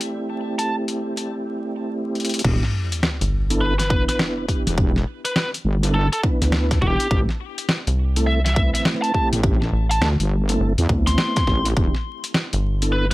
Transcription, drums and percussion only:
0.01 closed hi-hat medium
0.59 closed hi-hat medium
0.88 closed hi-hat soft
1.17 closed hi-hat medium
2.15 closed hi-hat soft
2.20 closed hi-hat soft
2.25 closed hi-hat medium
2.29 closed hi-hat soft
2.34 closed hi-hat medium
2.39 closed hi-hat medium
2.45 kick loud
2.45 crash loud
2.63 snare soft
2.92 closed hi-hat medium
3.03 snare loud
3.21 closed hi-hat medium
3.50 closed hi-hat medium
3.79 snare soft
3.79 closed hi-hat medium
3.90 kick loud
4.09 snare soft
4.09 closed hi-hat medium
4.19 snare loud
4.49 kick medium
4.49 closed hi-hat soft
4.67 closed hi-hat medium
4.78 kick loud
4.96 snare soft
5.25 closed hi-hat medium
5.36 snare loud
5.54 closed hi-hat medium
5.83 closed hi-hat medium
6.13 closed hi-hat medium
6.23 kick loud
6.42 snare soft
6.42 closed hi-hat medium
6.52 snare loud
6.71 kick loud
6.71 snare soft
6.71 closed hi-hat soft
6.82 kick medium
7.00 closed hi-hat medium
7.11 kick loud
7.29 snare soft
7.58 closed hi-hat medium
7.69 snare loud
7.87 closed hi-hat medium
8.16 closed hi-hat medium
8.46 snare soft
8.46 closed hi-hat medium
8.56 kick loud
8.75 snare soft
8.75 closed hi-hat medium
8.80 snare soft
8.85 snare loud
8.85 snare soft
8.94 snare soft
9.04 closed hi-hat soft
9.14 kick medium
9.33 closed hi-hat medium
9.43 kick loud
9.62 snare soft
9.91 closed hi-hat medium
10.02 snare loud
10.20 closed hi-hat medium
10.49 closed hi-hat medium
10.78 closed hi-hat medium
10.89 kick loud
11.07 snare soft
11.07 closed hi-hat medium
11.18 snare loud
11.36 kick loud
11.36 snare soft
11.36 closed hi-hat soft
11.47 kick medium
11.47 snare soft
11.65 closed hi-hat medium
11.77 kick loud
11.95 snare soft
12.24 closed hi-hat medium
12.34 snare loud
12.53 closed hi-hat soft
12.82 closed hi-hat medium

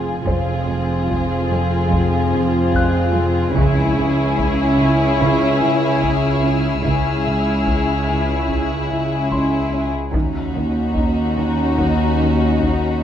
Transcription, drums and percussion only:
0.28 taiko medium
1.11 taiko medium
1.92 taiko medium
2.74 taiko medium
3.56 taiko medium
4.39 taiko medium
5.22 taiko medium
6.04 taiko medium
6.85 taiko medium
7.67 taiko medium
8.49 taiko medium
9.31 taiko medium
10.13 taiko medium
10.96 taiko medium
11.78 taiko medium
12.61 taiko medium

